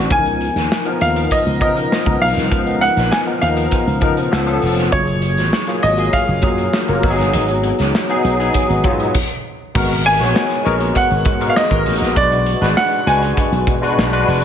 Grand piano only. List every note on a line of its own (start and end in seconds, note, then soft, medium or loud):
0.12 0.98 G#5 loud
1.01 1.32 F5 medium
1.32 1.60 D#5 medium
1.62 2.18 D#5 medium
2.22 2.84 F5 medium
2.81 3.13 F#5 medium
3.11 3.18 G#5 medium
3.41 4.58 F5 medium
4.92 5.86 C#5 medium
5.83 6.14 D#5 medium
6.13 9.11 F5 medium
10.06 10.62 G#5 loud
10.97 11.51 F#5 medium
11.49 11.56 F5 medium
11.56 12.19 D#5 medium
12.17 12.73 D5 medium
12.77 13.08 F#5 loud
13.07 14.24 G#5 medium